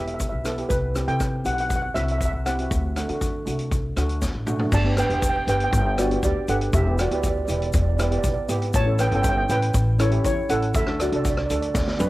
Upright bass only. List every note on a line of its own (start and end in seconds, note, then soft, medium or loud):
0.00 0.26 E1 medium
0.32 0.64 B1 medium
0.70 1.02 C2 medium
1.08 1.39 C3 medium
1.45 1.88 B1 medium
1.95 2.27 C2 medium
2.33 2.65 C2 medium
2.71 3.03 D2 loud
3.09 3.41 D3 medium
3.47 3.89 C2 medium
3.97 4.28 D2 medium
4.35 4.66 A1 medium
4.72 5.04 G1 loud
5.10 5.41 E1 medium
5.47 5.68 G1 medium
5.72 6.15 G1 loud
6.23 6.33 D2 medium
6.48 6.69 G1 medium
6.73 7.05 E1 loud
7.11 7.42 D2 medium
7.48 7.69 E1 medium
7.74 8.16 E1 loud
8.24 8.34 B1 loud
8.49 8.70 G#1 medium
8.74 9.06 A1 loud
9.11 9.43 G1 loud
9.49 9.71 A1 medium
9.74 10.17 A1 loud
10.25 10.35 E2 loud
10.49 10.71 A1 medium
10.75 11.07 D2 loud
11.12 11.44 C2 medium
11.50 11.72 D2 medium
11.75 11.96 D2 medium
12.01 12.10 F#1 medium